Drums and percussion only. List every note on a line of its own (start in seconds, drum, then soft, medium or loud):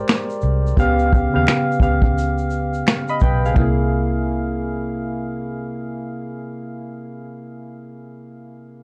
0.08 finger snap medium
0.08 snare loud
0.08 closed hi-hat medium
0.08 shaker medium
0.30 shaker soft
0.41 shaker soft
0.67 shaker medium
0.77 kick loud
0.77 closed hi-hat medium
0.77 shaker medium
0.99 shaker soft
1.13 kick medium
1.13 shaker soft
1.47 finger snap medium
1.47 snare loud
1.47 closed hi-hat medium
1.47 shaker medium
1.72 shaker soft
1.80 kick medium
1.80 shaker soft
2.02 kick medium
2.18 closed hi-hat medium
2.18 shaker medium
2.38 shaker soft
2.50 shaker soft
2.74 shaker soft
2.87 finger snap medium
2.87 snare loud
2.87 closed hi-hat medium
2.87 shaker medium
3.08 shaker soft
3.20 kick medium
3.20 shaker soft
3.45 shaker medium
3.56 finger snap medium
3.56 kick loud